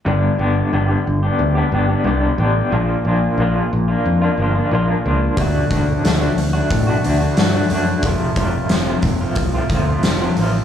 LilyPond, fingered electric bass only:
\new Staff \with { instrumentName = "Fingered electric bass" } { \clef bass \time 4/4 \key d \mixolydian \tempo 4 = 90 g,,8 g,,8 g,,8 g,,8 d,8 g,,8 c,8 a,,8 | bes,,8 bes,,8 bes,,8 bes,,8 f,8 g,,8 bes,,8 cis,8 | d,8 d,8 d,8 d,8 a,8 d,8 g,8 fis,8 | f,,8 f,,8 f,,8 f,,8 c,8 d,8 f,,8 a,,8 | }